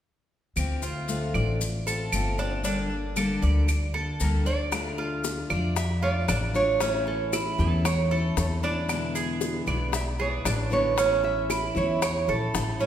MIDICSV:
0, 0, Header, 1, 7, 480
1, 0, Start_track
1, 0, Key_signature, -1, "minor"
1, 0, Tempo, 520382
1, 523, Time_signature, 4, 2, 24, 8
1, 4362, Key_signature, -1, "minor"
1, 11864, End_track
2, 0, Start_track
2, 0, Title_t, "Nylon-string guitar"
2, 0, Program_c, 0, 24
2, 3882, Note_on_c, 0, 70, 79
2, 3947, Note_off_c, 0, 70, 0
2, 4118, Note_on_c, 0, 74, 82
2, 5317, Note_off_c, 0, 74, 0
2, 5320, Note_on_c, 0, 76, 81
2, 5561, Note_off_c, 0, 76, 0
2, 5565, Note_on_c, 0, 74, 90
2, 6043, Note_off_c, 0, 74, 0
2, 6047, Note_on_c, 0, 73, 102
2, 6528, Note_on_c, 0, 69, 81
2, 6539, Note_off_c, 0, 73, 0
2, 6997, Note_off_c, 0, 69, 0
2, 7008, Note_on_c, 0, 69, 92
2, 7732, Note_on_c, 0, 73, 83
2, 7747, Note_off_c, 0, 69, 0
2, 7796, Note_off_c, 0, 73, 0
2, 7974, Note_on_c, 0, 74, 87
2, 9132, Note_off_c, 0, 74, 0
2, 9178, Note_on_c, 0, 76, 82
2, 9241, Note_off_c, 0, 76, 0
2, 9419, Note_on_c, 0, 74, 87
2, 9778, Note_off_c, 0, 74, 0
2, 9778, Note_on_c, 0, 73, 87
2, 9893, Note_off_c, 0, 73, 0
2, 9897, Note_on_c, 0, 73, 87
2, 10367, Note_off_c, 0, 73, 0
2, 10370, Note_on_c, 0, 76, 81
2, 10855, Note_off_c, 0, 76, 0
2, 10858, Note_on_c, 0, 73, 87
2, 11537, Note_off_c, 0, 73, 0
2, 11585, Note_on_c, 0, 69, 68
2, 11801, Note_off_c, 0, 69, 0
2, 11819, Note_on_c, 0, 73, 82
2, 11864, Note_off_c, 0, 73, 0
2, 11864, End_track
3, 0, Start_track
3, 0, Title_t, "Cuban tres"
3, 0, Program_c, 1, 25
3, 762, Note_on_c, 1, 65, 55
3, 1228, Note_off_c, 1, 65, 0
3, 1243, Note_on_c, 1, 74, 55
3, 1709, Note_off_c, 1, 74, 0
3, 1723, Note_on_c, 1, 69, 72
3, 2188, Note_off_c, 1, 69, 0
3, 2204, Note_on_c, 1, 62, 75
3, 2430, Note_off_c, 1, 62, 0
3, 2441, Note_on_c, 1, 62, 74
3, 2907, Note_off_c, 1, 62, 0
3, 2920, Note_on_c, 1, 69, 53
3, 3154, Note_off_c, 1, 69, 0
3, 3158, Note_on_c, 1, 74, 61
3, 3625, Note_off_c, 1, 74, 0
3, 3634, Note_on_c, 1, 69, 67
3, 4103, Note_off_c, 1, 69, 0
3, 4115, Note_on_c, 1, 74, 60
3, 4351, Note_off_c, 1, 74, 0
3, 4595, Note_on_c, 1, 65, 62
3, 5064, Note_off_c, 1, 65, 0
3, 5075, Note_on_c, 1, 74, 57
3, 5544, Note_off_c, 1, 74, 0
3, 5558, Note_on_c, 1, 65, 70
3, 5792, Note_off_c, 1, 65, 0
3, 5797, Note_on_c, 1, 62, 66
3, 6265, Note_off_c, 1, 62, 0
3, 6281, Note_on_c, 1, 61, 75
3, 6747, Note_off_c, 1, 61, 0
3, 6759, Note_on_c, 1, 64, 51
3, 7226, Note_off_c, 1, 64, 0
3, 7240, Note_on_c, 1, 73, 60
3, 7474, Note_off_c, 1, 73, 0
3, 7482, Note_on_c, 1, 69, 63
3, 7948, Note_off_c, 1, 69, 0
3, 7966, Note_on_c, 1, 62, 76
3, 8430, Note_off_c, 1, 62, 0
3, 8442, Note_on_c, 1, 68, 66
3, 8908, Note_off_c, 1, 68, 0
3, 8924, Note_on_c, 1, 74, 63
3, 9390, Note_off_c, 1, 74, 0
3, 9404, Note_on_c, 1, 68, 69
3, 9637, Note_off_c, 1, 68, 0
3, 9645, Note_on_c, 1, 62, 74
3, 10111, Note_off_c, 1, 62, 0
3, 10129, Note_on_c, 1, 61, 76
3, 10593, Note_off_c, 1, 61, 0
3, 10611, Note_on_c, 1, 64, 48
3, 11075, Note_off_c, 1, 64, 0
3, 11090, Note_on_c, 1, 73, 66
3, 11322, Note_off_c, 1, 73, 0
3, 11334, Note_on_c, 1, 69, 71
3, 11797, Note_off_c, 1, 69, 0
3, 11811, Note_on_c, 1, 61, 77
3, 11864, Note_off_c, 1, 61, 0
3, 11864, End_track
4, 0, Start_track
4, 0, Title_t, "Steel-string acoustic guitar"
4, 0, Program_c, 2, 25
4, 515, Note_on_c, 2, 50, 53
4, 522, Note_on_c, 2, 57, 61
4, 530, Note_on_c, 2, 60, 61
4, 531, Note_on_c, 2, 65, 58
4, 744, Note_off_c, 2, 65, 0
4, 749, Note_off_c, 2, 50, 0
4, 753, Note_off_c, 2, 57, 0
4, 755, Note_on_c, 2, 65, 46
4, 757, Note_off_c, 2, 60, 0
4, 768, Note_on_c, 2, 60, 35
4, 775, Note_on_c, 2, 57, 30
4, 989, Note_off_c, 2, 65, 0
4, 990, Note_off_c, 2, 57, 0
4, 993, Note_on_c, 2, 50, 62
4, 996, Note_off_c, 2, 60, 0
4, 1002, Note_on_c, 2, 57, 68
4, 1006, Note_on_c, 2, 60, 59
4, 1012, Note_on_c, 2, 65, 62
4, 1468, Note_off_c, 2, 50, 0
4, 1473, Note_off_c, 2, 57, 0
4, 1475, Note_off_c, 2, 60, 0
4, 1477, Note_off_c, 2, 65, 0
4, 1716, Note_on_c, 2, 65, 40
4, 1726, Note_on_c, 2, 60, 36
4, 1736, Note_on_c, 2, 57, 35
4, 1950, Note_off_c, 2, 65, 0
4, 1955, Note_off_c, 2, 60, 0
4, 1960, Note_off_c, 2, 57, 0
4, 1962, Note_on_c, 2, 50, 57
4, 1969, Note_on_c, 2, 57, 55
4, 1977, Note_on_c, 2, 60, 65
4, 1983, Note_on_c, 2, 65, 60
4, 2184, Note_off_c, 2, 65, 0
4, 2193, Note_off_c, 2, 50, 0
4, 2194, Note_off_c, 2, 60, 0
4, 2195, Note_on_c, 2, 65, 44
4, 2196, Note_off_c, 2, 57, 0
4, 2205, Note_on_c, 2, 60, 45
4, 2212, Note_on_c, 2, 57, 33
4, 2429, Note_off_c, 2, 65, 0
4, 2429, Note_on_c, 2, 50, 58
4, 2434, Note_off_c, 2, 60, 0
4, 2436, Note_off_c, 2, 57, 0
4, 2436, Note_on_c, 2, 55, 56
4, 2439, Note_on_c, 2, 58, 65
4, 2445, Note_on_c, 2, 62, 69
4, 2452, Note_on_c, 2, 69, 67
4, 2661, Note_off_c, 2, 69, 0
4, 2666, Note_off_c, 2, 50, 0
4, 2669, Note_off_c, 2, 55, 0
4, 2670, Note_off_c, 2, 62, 0
4, 2671, Note_off_c, 2, 58, 0
4, 2672, Note_on_c, 2, 69, 41
4, 2681, Note_on_c, 2, 62, 34
4, 2692, Note_on_c, 2, 58, 31
4, 2907, Note_off_c, 2, 69, 0
4, 2912, Note_off_c, 2, 62, 0
4, 2914, Note_on_c, 2, 50, 60
4, 2917, Note_off_c, 2, 58, 0
4, 2922, Note_on_c, 2, 55, 70
4, 2927, Note_on_c, 2, 58, 77
4, 2931, Note_on_c, 2, 62, 72
4, 2932, Note_on_c, 2, 69, 78
4, 3386, Note_off_c, 2, 50, 0
4, 3390, Note_off_c, 2, 55, 0
4, 3391, Note_off_c, 2, 58, 0
4, 3394, Note_off_c, 2, 62, 0
4, 3395, Note_off_c, 2, 69, 0
4, 3631, Note_on_c, 2, 69, 42
4, 3643, Note_on_c, 2, 62, 33
4, 3649, Note_on_c, 2, 58, 32
4, 3867, Note_off_c, 2, 69, 0
4, 3873, Note_off_c, 2, 62, 0
4, 3875, Note_on_c, 2, 50, 60
4, 3876, Note_off_c, 2, 58, 0
4, 3878, Note_on_c, 2, 55, 53
4, 3886, Note_on_c, 2, 58, 63
4, 3889, Note_on_c, 2, 69, 58
4, 3890, Note_on_c, 2, 62, 58
4, 4099, Note_off_c, 2, 69, 0
4, 4109, Note_off_c, 2, 50, 0
4, 4110, Note_off_c, 2, 55, 0
4, 4110, Note_on_c, 2, 69, 44
4, 4112, Note_off_c, 2, 62, 0
4, 4114, Note_off_c, 2, 58, 0
4, 4123, Note_on_c, 2, 62, 46
4, 4133, Note_on_c, 2, 58, 35
4, 4346, Note_off_c, 2, 69, 0
4, 4353, Note_off_c, 2, 62, 0
4, 4353, Note_on_c, 2, 50, 53
4, 4357, Note_off_c, 2, 58, 0
4, 4361, Note_on_c, 2, 57, 62
4, 4366, Note_on_c, 2, 62, 65
4, 4374, Note_on_c, 2, 65, 63
4, 5059, Note_off_c, 2, 65, 0
4, 5067, Note_off_c, 2, 50, 0
4, 5068, Note_off_c, 2, 62, 0
4, 5070, Note_on_c, 2, 65, 64
4, 5079, Note_on_c, 2, 62, 48
4, 5086, Note_off_c, 2, 57, 0
4, 5090, Note_on_c, 2, 57, 51
4, 5306, Note_off_c, 2, 65, 0
4, 5307, Note_off_c, 2, 57, 0
4, 5311, Note_off_c, 2, 62, 0
4, 5552, Note_on_c, 2, 65, 45
4, 5562, Note_on_c, 2, 62, 40
4, 5571, Note_on_c, 2, 57, 41
4, 6024, Note_off_c, 2, 65, 0
4, 6032, Note_off_c, 2, 62, 0
4, 6035, Note_on_c, 2, 65, 69
4, 6036, Note_off_c, 2, 57, 0
4, 6043, Note_on_c, 2, 62, 55
4, 6054, Note_on_c, 2, 57, 46
4, 6269, Note_off_c, 2, 65, 0
4, 6272, Note_off_c, 2, 57, 0
4, 6273, Note_off_c, 2, 62, 0
4, 6274, Note_on_c, 2, 52, 52
4, 6283, Note_on_c, 2, 57, 64
4, 6286, Note_on_c, 2, 61, 65
4, 6294, Note_on_c, 2, 64, 60
4, 6991, Note_off_c, 2, 61, 0
4, 6991, Note_off_c, 2, 64, 0
4, 6993, Note_off_c, 2, 57, 0
4, 6995, Note_on_c, 2, 64, 67
4, 7002, Note_on_c, 2, 61, 52
4, 7013, Note_on_c, 2, 57, 46
4, 7229, Note_off_c, 2, 64, 0
4, 7233, Note_off_c, 2, 61, 0
4, 7234, Note_off_c, 2, 57, 0
4, 7237, Note_off_c, 2, 52, 0
4, 7479, Note_on_c, 2, 64, 38
4, 7490, Note_on_c, 2, 61, 44
4, 7497, Note_on_c, 2, 57, 34
4, 7947, Note_off_c, 2, 64, 0
4, 7957, Note_off_c, 2, 61, 0
4, 7958, Note_on_c, 2, 64, 64
4, 7960, Note_off_c, 2, 57, 0
4, 7971, Note_on_c, 2, 61, 63
4, 7980, Note_on_c, 2, 57, 59
4, 8191, Note_off_c, 2, 64, 0
4, 8196, Note_on_c, 2, 47, 54
4, 8197, Note_off_c, 2, 61, 0
4, 8201, Note_on_c, 2, 50, 67
4, 8202, Note_off_c, 2, 57, 0
4, 8208, Note_on_c, 2, 56, 65
4, 8211, Note_on_c, 2, 59, 62
4, 8215, Note_on_c, 2, 64, 65
4, 8907, Note_off_c, 2, 59, 0
4, 8910, Note_off_c, 2, 47, 0
4, 8910, Note_off_c, 2, 64, 0
4, 8913, Note_off_c, 2, 50, 0
4, 8913, Note_on_c, 2, 64, 60
4, 8914, Note_off_c, 2, 56, 0
4, 8918, Note_on_c, 2, 59, 60
4, 8925, Note_on_c, 2, 56, 53
4, 8932, Note_on_c, 2, 50, 50
4, 9146, Note_off_c, 2, 50, 0
4, 9149, Note_off_c, 2, 56, 0
4, 9149, Note_off_c, 2, 64, 0
4, 9151, Note_off_c, 2, 59, 0
4, 9392, Note_on_c, 2, 64, 44
4, 9405, Note_on_c, 2, 59, 38
4, 9414, Note_on_c, 2, 56, 39
4, 9859, Note_off_c, 2, 64, 0
4, 9867, Note_off_c, 2, 59, 0
4, 9870, Note_on_c, 2, 64, 67
4, 9872, Note_off_c, 2, 56, 0
4, 9878, Note_on_c, 2, 59, 60
4, 9883, Note_on_c, 2, 56, 53
4, 9888, Note_on_c, 2, 50, 57
4, 10105, Note_off_c, 2, 50, 0
4, 10108, Note_off_c, 2, 64, 0
4, 10108, Note_on_c, 2, 52, 53
4, 10112, Note_off_c, 2, 59, 0
4, 10114, Note_off_c, 2, 56, 0
4, 10118, Note_on_c, 2, 57, 57
4, 10130, Note_on_c, 2, 64, 68
4, 10832, Note_off_c, 2, 64, 0
4, 10836, Note_on_c, 2, 64, 70
4, 10849, Note_on_c, 2, 61, 54
4, 10852, Note_off_c, 2, 57, 0
4, 10856, Note_on_c, 2, 57, 58
4, 11072, Note_off_c, 2, 64, 0
4, 11079, Note_off_c, 2, 61, 0
4, 11082, Note_off_c, 2, 57, 0
4, 11083, Note_off_c, 2, 52, 0
4, 11322, Note_on_c, 2, 64, 45
4, 11331, Note_on_c, 2, 61, 39
4, 11342, Note_on_c, 2, 57, 34
4, 11789, Note_off_c, 2, 64, 0
4, 11800, Note_on_c, 2, 64, 59
4, 11801, Note_off_c, 2, 61, 0
4, 11806, Note_off_c, 2, 57, 0
4, 11814, Note_on_c, 2, 61, 65
4, 11820, Note_on_c, 2, 57, 51
4, 11864, Note_off_c, 2, 57, 0
4, 11864, Note_off_c, 2, 61, 0
4, 11864, Note_off_c, 2, 64, 0
4, 11864, End_track
5, 0, Start_track
5, 0, Title_t, "Upright bass"
5, 0, Program_c, 3, 32
5, 518, Note_on_c, 3, 38, 76
5, 1204, Note_off_c, 3, 38, 0
5, 1240, Note_on_c, 3, 33, 86
5, 1924, Note_off_c, 3, 33, 0
5, 1962, Note_on_c, 3, 31, 67
5, 3101, Note_off_c, 3, 31, 0
5, 3160, Note_on_c, 3, 38, 87
5, 3844, Note_off_c, 3, 38, 0
5, 3880, Note_on_c, 3, 38, 63
5, 5020, Note_off_c, 3, 38, 0
5, 5078, Note_on_c, 3, 41, 87
5, 5763, Note_off_c, 3, 41, 0
5, 5794, Note_on_c, 3, 33, 74
5, 6937, Note_off_c, 3, 33, 0
5, 6998, Note_on_c, 3, 40, 95
5, 7683, Note_off_c, 3, 40, 0
5, 7718, Note_on_c, 3, 40, 77
5, 8860, Note_off_c, 3, 40, 0
5, 8921, Note_on_c, 3, 35, 83
5, 9606, Note_off_c, 3, 35, 0
5, 9638, Note_on_c, 3, 33, 75
5, 10783, Note_off_c, 3, 33, 0
5, 10844, Note_on_c, 3, 40, 86
5, 11293, Note_off_c, 3, 40, 0
5, 11327, Note_on_c, 3, 34, 69
5, 11551, Note_off_c, 3, 34, 0
5, 11569, Note_on_c, 3, 33, 74
5, 11864, Note_off_c, 3, 33, 0
5, 11864, End_track
6, 0, Start_track
6, 0, Title_t, "Muted steel-string acoustic guitar strokes"
6, 1483, Note_on_c, 9, 29, 55
6, 1576, Note_off_c, 9, 29, 0
6, 3397, Note_on_c, 9, 29, 63
6, 3489, Note_off_c, 9, 29, 0
6, 5315, Note_on_c, 9, 29, 59
6, 5407, Note_off_c, 9, 29, 0
6, 7241, Note_on_c, 9, 29, 60
6, 7333, Note_off_c, 9, 29, 0
6, 9152, Note_on_c, 9, 29, 59
6, 9244, Note_off_c, 9, 29, 0
6, 11087, Note_on_c, 9, 29, 59
6, 11179, Note_off_c, 9, 29, 0
6, 11864, End_track
7, 0, Start_track
7, 0, Title_t, "Drums"
7, 521, Note_on_c, 9, 70, 59
7, 524, Note_on_c, 9, 75, 58
7, 613, Note_off_c, 9, 70, 0
7, 616, Note_off_c, 9, 75, 0
7, 759, Note_on_c, 9, 70, 51
7, 851, Note_off_c, 9, 70, 0
7, 1002, Note_on_c, 9, 70, 62
7, 1094, Note_off_c, 9, 70, 0
7, 1240, Note_on_c, 9, 75, 61
7, 1243, Note_on_c, 9, 70, 21
7, 1332, Note_off_c, 9, 75, 0
7, 1335, Note_off_c, 9, 70, 0
7, 1486, Note_on_c, 9, 70, 69
7, 1579, Note_off_c, 9, 70, 0
7, 1729, Note_on_c, 9, 70, 55
7, 1821, Note_off_c, 9, 70, 0
7, 1960, Note_on_c, 9, 75, 67
7, 1961, Note_on_c, 9, 70, 63
7, 2052, Note_off_c, 9, 75, 0
7, 2054, Note_off_c, 9, 70, 0
7, 2200, Note_on_c, 9, 70, 27
7, 2292, Note_off_c, 9, 70, 0
7, 2435, Note_on_c, 9, 70, 62
7, 2527, Note_off_c, 9, 70, 0
7, 2919, Note_on_c, 9, 70, 60
7, 2923, Note_on_c, 9, 75, 58
7, 3011, Note_off_c, 9, 70, 0
7, 3016, Note_off_c, 9, 75, 0
7, 3161, Note_on_c, 9, 70, 23
7, 3253, Note_off_c, 9, 70, 0
7, 3398, Note_on_c, 9, 70, 61
7, 3401, Note_on_c, 9, 75, 58
7, 3490, Note_off_c, 9, 70, 0
7, 3493, Note_off_c, 9, 75, 0
7, 3875, Note_on_c, 9, 70, 70
7, 3967, Note_off_c, 9, 70, 0
7, 4116, Note_on_c, 9, 70, 23
7, 4208, Note_off_c, 9, 70, 0
7, 4353, Note_on_c, 9, 70, 59
7, 4357, Note_on_c, 9, 60, 51
7, 4359, Note_on_c, 9, 75, 61
7, 4445, Note_off_c, 9, 70, 0
7, 4449, Note_off_c, 9, 60, 0
7, 4451, Note_off_c, 9, 75, 0
7, 4598, Note_on_c, 9, 60, 33
7, 4690, Note_off_c, 9, 60, 0
7, 4834, Note_on_c, 9, 70, 69
7, 4838, Note_on_c, 9, 60, 56
7, 4926, Note_off_c, 9, 70, 0
7, 4930, Note_off_c, 9, 60, 0
7, 5075, Note_on_c, 9, 75, 63
7, 5076, Note_on_c, 9, 70, 24
7, 5077, Note_on_c, 9, 60, 31
7, 5168, Note_off_c, 9, 70, 0
7, 5168, Note_off_c, 9, 75, 0
7, 5169, Note_off_c, 9, 60, 0
7, 5314, Note_on_c, 9, 70, 64
7, 5317, Note_on_c, 9, 60, 60
7, 5406, Note_off_c, 9, 70, 0
7, 5410, Note_off_c, 9, 60, 0
7, 5797, Note_on_c, 9, 60, 54
7, 5797, Note_on_c, 9, 61, 66
7, 5798, Note_on_c, 9, 70, 67
7, 5800, Note_on_c, 9, 75, 70
7, 5890, Note_off_c, 9, 60, 0
7, 5890, Note_off_c, 9, 61, 0
7, 5890, Note_off_c, 9, 70, 0
7, 5892, Note_off_c, 9, 75, 0
7, 6037, Note_on_c, 9, 60, 31
7, 6039, Note_on_c, 9, 70, 28
7, 6130, Note_off_c, 9, 60, 0
7, 6132, Note_off_c, 9, 70, 0
7, 6277, Note_on_c, 9, 60, 54
7, 6277, Note_on_c, 9, 70, 62
7, 6369, Note_off_c, 9, 60, 0
7, 6369, Note_off_c, 9, 70, 0
7, 6521, Note_on_c, 9, 60, 38
7, 6613, Note_off_c, 9, 60, 0
7, 6761, Note_on_c, 9, 60, 56
7, 6761, Note_on_c, 9, 70, 70
7, 6763, Note_on_c, 9, 75, 62
7, 6853, Note_off_c, 9, 70, 0
7, 6854, Note_off_c, 9, 60, 0
7, 6856, Note_off_c, 9, 75, 0
7, 7005, Note_on_c, 9, 70, 20
7, 7097, Note_off_c, 9, 70, 0
7, 7242, Note_on_c, 9, 60, 65
7, 7242, Note_on_c, 9, 75, 58
7, 7244, Note_on_c, 9, 70, 65
7, 7335, Note_off_c, 9, 60, 0
7, 7335, Note_off_c, 9, 75, 0
7, 7336, Note_off_c, 9, 70, 0
7, 7482, Note_on_c, 9, 60, 31
7, 7574, Note_off_c, 9, 60, 0
7, 7721, Note_on_c, 9, 60, 62
7, 7721, Note_on_c, 9, 61, 75
7, 7723, Note_on_c, 9, 70, 67
7, 7813, Note_off_c, 9, 60, 0
7, 7813, Note_off_c, 9, 61, 0
7, 7815, Note_off_c, 9, 70, 0
7, 7962, Note_on_c, 9, 60, 28
7, 7965, Note_on_c, 9, 70, 28
7, 8054, Note_off_c, 9, 60, 0
7, 8057, Note_off_c, 9, 70, 0
7, 8202, Note_on_c, 9, 70, 57
7, 8203, Note_on_c, 9, 60, 52
7, 8205, Note_on_c, 9, 75, 60
7, 8294, Note_off_c, 9, 70, 0
7, 8295, Note_off_c, 9, 60, 0
7, 8297, Note_off_c, 9, 75, 0
7, 8443, Note_on_c, 9, 70, 54
7, 8445, Note_on_c, 9, 60, 33
7, 8535, Note_off_c, 9, 70, 0
7, 8537, Note_off_c, 9, 60, 0
7, 8679, Note_on_c, 9, 70, 60
7, 8681, Note_on_c, 9, 60, 56
7, 8771, Note_off_c, 9, 70, 0
7, 8773, Note_off_c, 9, 60, 0
7, 8920, Note_on_c, 9, 70, 21
7, 8921, Note_on_c, 9, 60, 29
7, 8925, Note_on_c, 9, 75, 61
7, 9012, Note_off_c, 9, 70, 0
7, 9013, Note_off_c, 9, 60, 0
7, 9018, Note_off_c, 9, 75, 0
7, 9160, Note_on_c, 9, 60, 68
7, 9165, Note_on_c, 9, 70, 69
7, 9252, Note_off_c, 9, 60, 0
7, 9257, Note_off_c, 9, 70, 0
7, 9643, Note_on_c, 9, 60, 59
7, 9643, Note_on_c, 9, 61, 68
7, 9646, Note_on_c, 9, 70, 65
7, 9648, Note_on_c, 9, 75, 59
7, 9735, Note_off_c, 9, 60, 0
7, 9735, Note_off_c, 9, 61, 0
7, 9739, Note_off_c, 9, 70, 0
7, 9741, Note_off_c, 9, 75, 0
7, 9888, Note_on_c, 9, 60, 31
7, 9890, Note_on_c, 9, 70, 26
7, 9980, Note_off_c, 9, 60, 0
7, 9982, Note_off_c, 9, 70, 0
7, 10125, Note_on_c, 9, 60, 60
7, 10129, Note_on_c, 9, 70, 66
7, 10217, Note_off_c, 9, 60, 0
7, 10222, Note_off_c, 9, 70, 0
7, 10365, Note_on_c, 9, 60, 36
7, 10458, Note_off_c, 9, 60, 0
7, 10606, Note_on_c, 9, 60, 56
7, 10611, Note_on_c, 9, 70, 59
7, 10612, Note_on_c, 9, 75, 61
7, 10698, Note_off_c, 9, 60, 0
7, 10704, Note_off_c, 9, 70, 0
7, 10704, Note_off_c, 9, 75, 0
7, 10851, Note_on_c, 9, 70, 21
7, 10943, Note_off_c, 9, 70, 0
7, 11089, Note_on_c, 9, 60, 61
7, 11089, Note_on_c, 9, 70, 61
7, 11091, Note_on_c, 9, 75, 53
7, 11181, Note_off_c, 9, 60, 0
7, 11181, Note_off_c, 9, 70, 0
7, 11183, Note_off_c, 9, 75, 0
7, 11331, Note_on_c, 9, 60, 28
7, 11423, Note_off_c, 9, 60, 0
7, 11570, Note_on_c, 9, 70, 66
7, 11573, Note_on_c, 9, 60, 66
7, 11573, Note_on_c, 9, 61, 69
7, 11663, Note_off_c, 9, 70, 0
7, 11665, Note_off_c, 9, 60, 0
7, 11665, Note_off_c, 9, 61, 0
7, 11810, Note_on_c, 9, 70, 25
7, 11812, Note_on_c, 9, 60, 30
7, 11864, Note_off_c, 9, 60, 0
7, 11864, Note_off_c, 9, 70, 0
7, 11864, End_track
0, 0, End_of_file